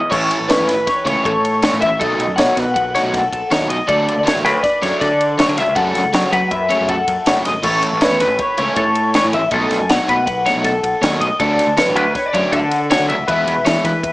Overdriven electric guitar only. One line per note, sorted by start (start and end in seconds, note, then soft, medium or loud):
0.10 0.36 E3 medium
0.10 0.36 A3 loud
0.10 0.36 C#4 medium
0.10 0.37 E4 loud
0.49 0.74 E3 medium
0.49 0.74 A3 loud
0.49 0.74 C#4 loud
0.49 0.74 E4 medium
1.05 1.31 E3 medium
1.05 1.30 A3 medium
1.05 1.30 C#4 medium
1.05 1.30 E4 loud
1.63 1.87 E3 medium
1.63 1.87 A3 medium
1.63 1.88 C#4 loud
1.63 1.88 E4 loud
2.00 2.25 B2 loud
2.00 2.25 F#3 loud
2.00 2.25 A3 loud
2.00 2.25 D#4 loud
2.39 2.63 B2 medium
2.39 2.63 F#3 medium
2.39 2.63 A3 loud
2.39 2.63 D#4 medium
2.95 3.20 B2 medium
2.95 3.19 F#3 medium
2.95 3.19 A3 medium
2.95 3.19 D#4 medium
3.51 3.75 B2 medium
3.51 3.76 F#3 medium
3.51 3.76 A3 medium
3.51 3.76 D#4 loud
3.87 4.12 D3 loud
3.87 4.13 F#3 loud
3.87 4.13 A3 loud
3.87 4.13 D4 loud
4.24 4.49 D3 medium
4.24 4.50 F#3 loud
4.24 4.50 A3 medium
4.24 4.50 D4 medium
4.82 5.07 D3 medium
4.82 5.07 F#3 medium
4.82 5.07 A3 medium
4.82 5.07 D4 loud
5.38 5.63 D3 medium
5.38 5.63 F#3 medium
5.38 5.63 A3 loud
5.38 5.63 D4 loud
5.76 6.00 C#3 medium
5.76 6.00 F#3 loud
5.76 6.01 A3 loud
5.76 6.01 C#4 loud
6.13 6.38 C#3 loud
6.13 6.38 F#3 medium
6.13 6.39 A3 medium
6.13 6.39 C#4 medium
6.69 6.95 C#3 medium
6.69 6.95 F#3 medium
6.69 6.95 A3 medium
6.69 6.94 C#4 medium
7.27 7.51 C#3 medium
7.27 7.52 F#3 medium
7.27 7.52 A3 loud
7.27 7.52 C#4 medium
7.63 7.88 E3 medium
7.63 7.89 A3 loud
7.63 7.89 C#4 loud
7.63 7.89 E4 loud
8.01 8.26 E3 medium
8.01 8.26 A3 medium
8.01 8.26 C#4 medium
8.01 8.27 E4 loud
8.58 8.83 E3 medium
8.58 8.83 A3 medium
8.58 8.83 C#4 medium
8.58 8.83 E4 medium
9.15 9.39 E3 medium
9.15 9.39 A3 loud
9.15 9.40 C#4 medium
9.15 9.40 E4 loud
9.53 9.77 B2 loud
9.53 9.77 F#3 medium
9.53 9.78 A3 loud
9.53 9.78 D#4 loud
9.90 10.15 B2 medium
9.90 10.15 F#3 medium
9.90 10.15 A3 loud
9.90 10.15 D#4 loud
10.46 10.72 B2 medium
10.46 10.71 F#3 medium
10.46 10.71 A3 medium
10.46 10.71 D#4 medium
11.02 11.27 B2 medium
11.02 11.27 F#3 loud
11.02 11.27 A3 medium
11.02 11.28 D#4 loud
11.40 11.65 D3 loud
11.40 11.65 F#3 medium
11.40 11.65 A3 loud
11.40 11.65 D4 loud
11.77 12.02 D3 medium
11.77 12.02 F#3 medium
11.77 12.02 A3 medium
11.77 12.03 D4 medium
12.34 12.59 D3 medium
12.34 12.59 F#3 medium
12.34 12.59 A3 loud
12.34 12.58 D4 medium
12.90 13.15 D3 medium
12.90 13.15 F#3 medium
12.90 13.15 A3 loud
12.90 13.15 D4 loud
13.29 13.53 E3 medium
13.29 13.53 G#3 medium
13.29 13.53 B3 loud
13.29 13.53 E4 loud
13.65 13.90 E3 medium
13.65 13.90 G#3 medium
13.65 13.90 B3 medium
13.65 13.90 E4 loud